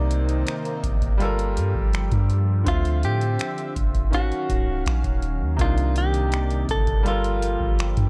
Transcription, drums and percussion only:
0.11 closed hi-hat
0.29 closed hi-hat
0.47 finger snap, closed hi-hat
0.65 closed hi-hat
0.83 kick, closed hi-hat
1.02 kick, closed hi-hat
1.20 closed hi-hat
1.39 closed hi-hat
1.57 closed hi-hat
1.75 kick
1.93 finger snap, closed hi-hat
2.12 kick, closed hi-hat
2.30 closed hi-hat
2.67 kick, closed hi-hat
2.85 closed hi-hat
3.03 closed hi-hat
3.21 closed hi-hat
3.39 finger snap, closed hi-hat
3.58 closed hi-hat
3.76 kick, closed hi-hat
3.94 kick, closed hi-hat
4.13 kick, closed hi-hat
4.32 closed hi-hat
4.49 kick, closed hi-hat
4.86 finger snap, closed hi-hat
5.04 kick, closed hi-hat
5.22 closed hi-hat
5.59 kick, closed hi-hat
5.78 closed hi-hat
5.96 closed hi-hat
6.14 closed hi-hat
6.32 finger snap, closed hi-hat
6.50 closed hi-hat
6.69 kick, closed hi-hat
6.87 kick, closed hi-hat
7.06 closed hi-hat
7.24 closed hi-hat
7.42 closed hi-hat
7.60 kick
7.79 finger snap, closed hi-hat
7.97 kick, closed hi-hat

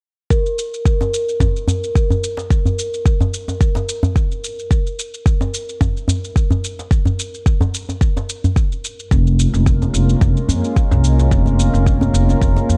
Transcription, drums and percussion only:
0.30 kick, shaker
0.46 shaker
0.59 shaker
0.74 shaker
0.85 kick, shaker
1.01 djembe tone, shaker
1.14 shaker
1.29 shaker
1.40 kick, djembe bass, shaker
1.56 shaker
1.68 djembe bass, shaker
1.84 shaker
1.95 kick, shaker
2.10 djembe bass, shaker
2.24 shaker
2.37 djembe slap, shaker
2.51 kick, shaker
2.66 djembe bass, shaker
2.79 shaker
2.94 shaker
3.06 kick, shaker
3.20 djembe tone, djembe bass, shaker
3.34 shaker
3.48 djembe tone, shaker
3.61 kick, shaker
3.75 djembe slap, djembe tone, shaker
3.89 shaker
4.03 djembe bass, shaker
4.16 kick, shaker
4.32 shaker
4.44 shaker
4.59 shaker
4.71 kick, shaker
4.87 shaker
4.99 shaker
5.14 shaker
5.26 kick, shaker
5.41 djembe tone, shaker
5.54 shaker
5.69 shaker
5.81 kick, djembe bass, shaker
5.97 shaker
6.08 djembe bass, shaker
6.24 shaker
6.36 kick, shaker
6.51 djembe bass, shaker
6.64 shaker
6.79 djembe slap, shaker
6.91 kick, shaker
7.05 djembe bass, shaker
7.19 shaker
7.34 shaker
7.46 kick, shaker
7.61 djembe tone, djembe bass, shaker
7.74 shaker
7.89 djembe tone, shaker
8.01 kick, shaker
8.17 djembe slap, djembe tone, shaker
8.29 shaker
8.44 djembe bass, shaker
8.56 kick, shaker
8.72 shaker
8.84 shaker
9.00 shaker
9.11 kick, shaker
9.27 shaker
9.39 shaker
9.54 shaker
9.66 kick, shaker
9.82 djembe tone, shaker
9.94 shaker
10.09 shaker
10.21 kick, djembe bass, shaker
10.37 shaker
10.49 djembe bass, shaker
10.64 shaker
10.76 kick, shaker
10.92 djembe bass, shaker
11.04 shaker
11.19 djembe slap, shaker
11.31 kick, shaker
11.46 djembe bass, shaker
11.59 shaker
11.74 shaker
11.86 kick, shaker
12.01 djembe tone, djembe bass, shaker
12.15 shaker
12.29 djembe tone, shaker
12.41 kick, shaker
12.56 djembe slap, djembe tone, shaker
12.70 shaker

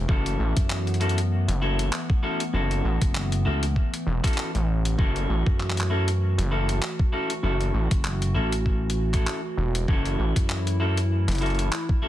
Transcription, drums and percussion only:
0.09 kick
0.26 closed hi-hat
0.57 kick, closed hi-hat
0.70 clap
0.87 closed hi-hat
0.94 closed hi-hat
1.01 closed hi-hat
1.09 closed hi-hat
1.18 closed hi-hat
1.49 closed hi-hat
1.79 closed hi-hat
1.93 clap
2.10 kick
2.40 closed hi-hat
2.71 closed hi-hat
3.02 kick, closed hi-hat
3.15 clap
3.32 closed hi-hat
3.63 closed hi-hat
3.76 kick
3.94 closed hi-hat
4.24 kick, clap, closed hi-hat
4.27 closed hi-hat
4.33 closed hi-hat
4.38 clap
4.55 closed hi-hat
4.85 closed hi-hat
4.99 kick
5.16 closed hi-hat
5.46 kick
5.60 clap
5.70 clap
5.77 clap, closed hi-hat
6.08 closed hi-hat
6.39 closed hi-hat
6.69 closed hi-hat
6.82 clap
6.99 kick
7.30 closed hi-hat
7.61 closed hi-hat
7.91 kick, closed hi-hat
8.04 clap
8.22 closed hi-hat
8.53 closed hi-hat
8.66 kick
8.90 closed hi-hat
9.14 kick, clap, closed hi-hat
9.27 clap
9.75 closed hi-hat
9.88 kick
10.06 closed hi-hat
10.36 kick, closed hi-hat
10.49 clap
10.67 closed hi-hat
10.97 closed hi-hat
11.28 closed hi-hat
11.32 closed hi-hat
11.35 closed hi-hat
11.38 closed hi-hat
11.42 closed hi-hat
11.46 closed hi-hat
11.50 closed hi-hat
11.55 closed hi-hat
11.59 closed hi-hat
11.72 clap
11.89 kick

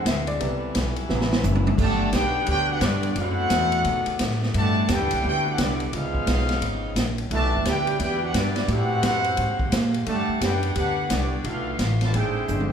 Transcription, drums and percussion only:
0.06 snare, hi-hat pedal, ride
0.27 ride
0.40 ride
0.75 snare, hi-hat pedal, ride
0.96 ride
1.09 snare
1.21 snare
1.32 snare
1.44 hi-hat pedal, high tom
1.55 high tom
1.67 high tom
1.78 kick, crash
2.13 snare, hi-hat pedal, ride
2.46 ride
2.81 snare, hi-hat pedal, ride
3.03 ride
3.16 ride
3.50 snare, hi-hat pedal, ride
3.72 ride
3.84 ride
4.06 ride
4.19 snare, hi-hat pedal, ride
4.31 snare
4.43 snare
4.54 ride
4.88 snare, hi-hat pedal, ride
5.11 ride
5.58 snare, hi-hat pedal, ride
5.80 ride
5.93 ride
6.15 kick
6.27 snare, hi-hat pedal, ride
6.39 snare
6.49 snare, ride
6.62 ride
6.96 snare, hi-hat pedal, ride
7.18 ride
7.31 ride
7.65 snare, hi-hat pedal, ride
7.87 ride
8.00 ride
8.34 snare, hi-hat pedal, ride
8.56 snare, ride
8.68 ride
9.03 snare, hi-hat pedal, ride
9.24 ride
9.37 ride
9.59 kick
9.72 snare, hi-hat pedal, ride
9.94 ride
10.06 ride
10.41 snare, hi-hat pedal, ride
10.63 ride
10.76 ride
11.10 snare, hi-hat pedal, ride
11.44 ride
11.79 snare, hi-hat pedal, ride
12.01 snare, ride
12.14 ride
12.48 hi-hat pedal, high tom
12.60 high tom

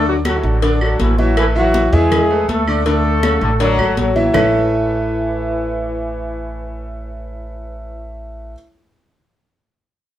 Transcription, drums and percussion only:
0.06 high conga
0.25 cowbell, high conga, claves
0.44 high conga
0.62 cowbell, high conga
0.81 high conga, claves
0.99 cowbell, high conga
1.18 high conga
1.37 cowbell, high conga, claves
1.55 high conga
1.74 cowbell, high conga
1.93 high conga
2.12 cowbell, high conga, low conga, claves
2.30 high conga
2.49 cowbell, high conga
2.68 claves
2.86 cowbell, high conga
3.05 high conga
3.23 cowbell, high conga, claves
3.42 high conga
3.60 cowbell, high conga
3.79 high conga, claves
3.97 cowbell, high conga
4.16 high conga
4.34 low bongo, low conga, claves

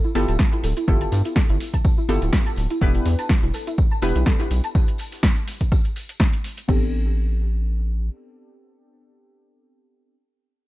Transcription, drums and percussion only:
0.04 tambourine
0.15 cross-stick, open hi-hat, tambourine
0.28 closed hi-hat, tambourine
0.39 kick, snare, tambourine
0.52 closed hi-hat, tambourine
0.64 open hi-hat, tambourine
0.77 closed hi-hat, tambourine
0.88 kick, tambourine
1.01 closed hi-hat, tambourine
1.12 open hi-hat, tambourine
1.25 closed hi-hat, tambourine
1.36 kick, snare, tambourine
1.50 closed hi-hat, tambourine
1.60 open hi-hat, tambourine
1.74 kick, closed hi-hat, tambourine
1.84 kick, tambourine
1.98 tambourine
2.09 open hi-hat, tambourine
2.22 closed hi-hat, tambourine
2.33 kick, snare, tambourine
2.46 closed hi-hat, tambourine
2.56 open hi-hat, tambourine
2.70 closed hi-hat, tambourine
2.82 kick, tambourine
2.94 closed hi-hat, tambourine
3.06 open hi-hat, tambourine
3.19 closed hi-hat, tambourine
3.29 kick, snare, tambourine
3.43 closed hi-hat, tambourine
3.54 open hi-hat, tambourine
3.67 closed hi-hat, tambourine
3.78 kick, tambourine
3.91 tambourine
4.02 cross-stick, open hi-hat, tambourine
4.15 closed hi-hat, tambourine
4.26 kick, snare, tambourine
4.40 closed hi-hat, tambourine
4.51 open hi-hat, tambourine
4.64 closed hi-hat, tambourine
4.75 kick, tambourine
4.88 closed hi-hat, tambourine
4.98 open hi-hat, tambourine
5.12 open hi-hat, tambourine
5.23 kick, snare, tambourine
5.36 closed hi-hat, tambourine
5.48 open hi-hat, tambourine
5.60 kick, closed hi-hat, tambourine
5.72 kick, cross-stick, tambourine
5.85 closed hi-hat, tambourine
5.96 open hi-hat, tambourine
6.09 closed hi-hat, tambourine
6.20 kick, snare, tambourine
6.33 closed hi-hat, tambourine
6.44 open hi-hat, tambourine
6.57 closed hi-hat, tambourine
6.69 kick, crash

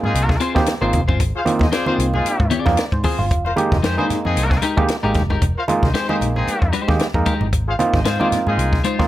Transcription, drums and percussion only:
0.04 low conga
0.15 closed hi-hat
0.29 kick, snare
0.40 closed hi-hat
0.56 kick, snare, high conga
0.66 snare, closed hi-hat
0.93 kick, closed hi-hat, high conga
1.09 kick, low conga
1.20 kick, closed hi-hat
1.46 closed hi-hat, high conga
1.59 kick, snare, high conga
1.72 snare, closed hi-hat
1.86 muted conga, high conga
2.00 closed hi-hat
2.14 low conga
2.26 closed hi-hat, muted conga
2.40 kick
2.51 closed hi-hat, high conga
2.66 kick, snare, high conga
2.77 snare, closed hi-hat
2.92 kick, muted conga
3.04 kick, open hi-hat, high conga
3.19 low conga
3.30 kick, closed hi-hat, muted conga
3.46 muted conga
3.57 closed hi-hat, high conga
3.72 kick, snare, high conga
3.84 snare, closed hi-hat, muted conga
3.99 high conga
4.10 snare, closed hi-hat, low conga
4.25 low conga
4.37 closed hi-hat, muted conga
4.51 kick, snare, muted conga
4.62 closed hi-hat
4.78 kick, high conga
4.88 snare, closed hi-hat, muted conga
5.14 kick, snare, closed hi-hat, high conga
5.30 kick, low conga
5.42 kick, closed hi-hat
5.68 closed hi-hat, high conga
5.83 kick, snare, high conga
5.95 snare, closed hi-hat, muted conga
6.09 muted conga, high conga
6.21 closed hi-hat, low conga
6.36 low conga
6.48 closed hi-hat, muted conga
6.62 kick
6.73 closed hi-hat
6.88 kick, snare, high conga
6.99 snare, closed hi-hat
7.14 kick
7.26 kick, closed hi-hat, high conga
7.41 low conga
7.53 kick, closed hi-hat, muted conga
7.79 closed hi-hat, high conga
7.94 kick, snare, high conga
8.05 snare, closed hi-hat, muted conga
8.21 high conga
8.32 snare, closed hi-hat, low conga
8.47 low conga
8.59 closed hi-hat
8.73 kick, snare
8.84 closed hi-hat
9.00 kick, snare, high conga

